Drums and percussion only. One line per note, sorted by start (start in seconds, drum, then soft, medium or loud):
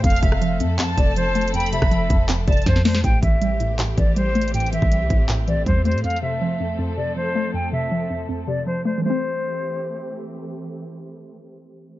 0.04 kick loud
0.04 closed hi-hat medium
0.10 closed hi-hat medium
0.16 closed hi-hat medium
0.23 kick loud
0.23 closed hi-hat medium
0.32 cross-stick loud
0.42 closed hi-hat medium
0.60 closed hi-hat medium
0.79 clap loud
0.79 closed hi-hat medium
0.98 kick loud
0.98 closed hi-hat medium
1.16 closed hi-hat medium
1.35 closed hi-hat medium
1.41 closed hi-hat medium
1.48 closed hi-hat medium
1.54 closed hi-hat medium
1.60 closed hi-hat medium
1.66 closed hi-hat medium
1.73 closed hi-hat medium
1.82 kick loud
1.82 cross-stick loud
1.91 closed hi-hat medium
2.10 kick loud
2.10 closed hi-hat medium
2.29 clap loud
2.29 closed hi-hat medium
2.48 kick loud
2.48 closed hi-hat soft
2.52 closed hi-hat medium
2.57 closed hi-hat medium
2.62 closed hi-hat medium
2.66 kick medium
2.66 snare medium
2.66 closed hi-hat medium
2.76 snare medium
2.85 snare loud
2.85 closed hi-hat medium
2.85 open hi-hat medium
2.95 snare loud
2.95 closed hi-hat medium
3.04 kick loud
3.04 closed hi-hat loud
3.23 kick medium
3.23 closed hi-hat medium
3.42 closed hi-hat medium
3.60 closed hi-hat medium
3.79 clap loud
3.79 closed hi-hat medium
3.98 kick medium
3.98 closed hi-hat medium
4.16 closed hi-hat medium
4.35 closed hi-hat medium
4.41 closed hi-hat medium
4.48 closed hi-hat medium
4.54 closed hi-hat medium
4.60 closed hi-hat medium
4.66 closed hi-hat medium
4.73 closed hi-hat medium
4.82 kick loud
4.92 closed hi-hat medium
5.10 kick medium
5.10 closed hi-hat medium
5.29 clap loud
5.29 closed hi-hat medium
5.48 closed hi-hat medium
5.66 kick medium
5.66 closed hi-hat medium
5.85 closed hi-hat medium
5.91 closed hi-hat medium
5.98 closed hi-hat medium
6.04 closed hi-hat medium
6.10 closed hi-hat medium
6.16 closed hi-hat medium